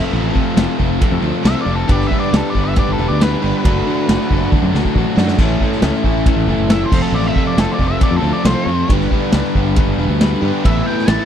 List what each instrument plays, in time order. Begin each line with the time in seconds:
Already playing: overdriven electric guitar F2 C3 F3 A3 C4 F4 A4
0.12 fingered electric bass A1, overdriven electric guitar F2 C3 F3 A3 C4 F4 A4
0.33 overdriven electric guitar F2 C3 F3 A3 C4 F4 A4, kick
0.37 overdriven electric guitar F3
0.55 fingered electric bass F1, overdriven electric guitar F2 F3 A3 C4 F4 A4, snare, ride bell
0.59 overdriven electric guitar C3 F3
0.69 snare
0.78 fingered electric bass F1, overdriven electric guitar F2 C3 F3 A3 C4 F4 A4, kick
0.99 overdriven electric guitar F2 C3 F3 A3 C4 F4 A4, kick, ride bell
1.04 overdriven electric guitar F3
1.12 fingered electric bass F2
1.21 fingered electric bass D2, overdriven electric guitar F2 C3 F3 A3 C4 F4 A4
1.44 fingered electric bass C2, overdriven electric guitar F2 C3 F3 A3 C4 F4 A4, lead electric guitar E5, snare, ride bell
1.61 overdriven electric guitar F3 A3, lead electric guitar D5
1.66 fingered electric bass F1, overdriven electric guitar F2 C3 F3 C4 F4 A4
1.75 lead electric guitar A4
1.88 fingered electric bass G1, overdriven electric guitar G2 D3 G3 B3 D4 G4 B4, lead electric guitar D5, kick, ride bell
2.01 snare
2.07 overdriven electric guitar G3, lead electric guitar E5
2.11 overdriven electric guitar G2 D3 G3 B3 D4 B4, kick
2.20 lead electric guitar D5
2.33 fingered electric bass C#2, overdriven electric guitar G2 D3 G3 B3 D4 B4, lead electric guitar A4, snare, ride bell
2.50 overdriven electric guitar G3, lead electric guitar D5
2.54 fingered electric bass G1, overdriven electric guitar G2 D3 G3 B3 D4 B4, kick
2.65 lead electric guitar E5
2.76 overdriven electric guitar G2 D3 G3 B3 D4 B4, lead electric guitar D5, kick, ride bell
2.89 fingered electric bass G1, lead electric guitar A4
2.98 fingered electric bass E1, overdriven electric guitar G2 D3 G3 B3 D4 B4
3.08 fingered electric bass D2, lead electric guitar D5
3.19 overdriven electric guitar G2 D3 G3 B3 D4 B4, lead electric guitar B4, snare, ride bell
3.41 fingered electric bass G1, overdriven electric guitar G2 D3 G3 B3 D4 G4 B4
3.64 fingered electric bass F#1, overdriven electric guitar D3 F#3 A3 D4 F#4 A4, kick, ride bell
3.87 overdriven electric guitar D3 F#3 A3 D4 F#4 A4
4.07 fingered electric bass F#1, overdriven electric guitar D3 F#3 A3 D4 F#4 A4, snare, ride bell
4.21 snare
4.28 fingered electric bass F#1, overdriven electric guitar D3 F#3 A3 D4, kick
4.32 overdriven electric guitar D4 F#4 A4
4.50 overdriven electric guitar D3 F#3 A3 D4, kick, high tom
4.55 overdriven electric guitar D4 F#4 A4
4.63 fingered electric bass F#2
4.72 fingered electric bass C#2, overdriven electric guitar D3 F#3 A3 D4 F#4 A4, snare
4.85 kick
4.95 fingered electric bass A1, overdriven electric guitar D3 F#3 A3 D4 F#4 A4, kick
5.17 fingered electric bass F#2, overdriven electric guitar D3 F#3 A3 D4 F#4 A4, snare
5.28 snare
5.38 fingered electric bass A1, overdriven electric guitar A2 E3 A3 C#4 E4 A4, kick, crash
5.59 overdriven electric guitar A2 E3 A3 C#4 E4, kick
5.63 overdriven electric guitar A4
5.72 snare
5.82 fingered electric bass C#2, overdriven electric guitar A2 E3 A3 C#4 E4 A4, snare, ride bell
5.93 snare
6.03 fingered electric bass A1, overdriven electric guitar A2 E3 A3 C#4 E4 A4, kick
6.25 overdriven electric guitar A2 E3 A3 C#4 E4 A4, kick, ride bell
6.36 fingered electric bass A1
6.47 fingered electric bass F#1, overdriven electric guitar A2 E3 A3 C#4 E4 A4
6.58 fingered electric bass F#1
6.69 overdriven electric guitar A2 E3 A3 C#4 E4 A4, lead electric guitar E5, snare, ride bell
6.85 lead electric guitar C5
6.92 fingered electric bass F1, overdriven electric guitar F2 C3 F3 A3 C4 F4 A4, kick, crash
7.02 lead electric guitar A4
7.12 fingered electric bass A1, overdriven electric guitar F2 C3 F3 A3 C4 F4 A4, lead electric guitar D5
7.27 lead electric guitar E5
7.36 overdriven electric guitar F2 C3 F3 A3 C4 F4 A4, kick
7.47 lead electric guitar D5
7.56 fingered electric bass F1, overdriven electric guitar F2 C3 F3 A3 C4 F4 A4, lead electric guitar A4, snare, ride bell
7.72 lead electric guitar D5
7.78 fingered electric bass F1, overdriven electric guitar F2 C3 F3 A3 C4 F4 A4, kick
7.88 lead electric guitar E5
8.00 overdriven electric guitar F2 C3 F3 A3 C4 F4 A4, lead electric guitar D5, kick, ride bell
8.11 fingered electric bass F2
8.16 lead electric guitar A4
8.21 fingered electric bass D2, overdriven electric guitar F2 F3 A3 C4 F4 A4
8.26 overdriven electric guitar C3 F3
8.33 lead electric guitar D5
8.44 fingered electric bass C2, overdriven electric guitar F2 C3 F3 A3 C4 F4 A4, lead electric guitar C5, snare, ride bell
8.48 overdriven electric guitar F3
8.66 fingered electric bass F2, overdriven electric guitar F2 C3 F3 A3 C4 F4 A4
8.89 fingered electric bass G1, overdriven electric guitar G2 D3 G3 B3 D4 G4 B4, kick, ride bell
9.01 snare
9.11 overdriven electric guitar G2 D3 G3 B3 D4 B4, kick
9.32 fingered electric bass C#2, overdriven electric guitar G2 D3 G3 B3 D4 B4, snare, ride bell
9.44 snare
9.55 fingered electric bass G1, overdriven electric guitar G2 D3 G3 B3 D4 B4, kick
9.76 overdriven electric guitar G2 D3 G3 B3 D4 B4, kick, ride bell
9.87 fingered electric bass G1
9.98 fingered electric bass E1, overdriven electric guitar G2 D3 G3 B3 D4 B4
10.08 fingered electric bass D2
10.21 overdriven electric guitar G2 D3 G3 B3 D4 B4, snare, ride bell
10.41 fingered electric bass G2, overdriven electric guitar G2 D3 G3 B3 D4 G4 B4
10.46 overdriven electric guitar G3
10.65 fingered electric bass A1, overdriven electric guitar A2 E3 A3 B3 E4 A4 B4, lead electric guitar E5, kick, ride bell
10.85 overdriven electric guitar A2 A3 B3 E4 B4, lead electric guitar G5
10.90 overdriven electric guitar A2 E3 A3
10.98 snare
11.08 fingered electric bass A1, overdriven electric guitar A2 A3 B3 E4 B4, lead electric guitar A5, snare, ride bell
11.12 overdriven electric guitar E3
11.19 snare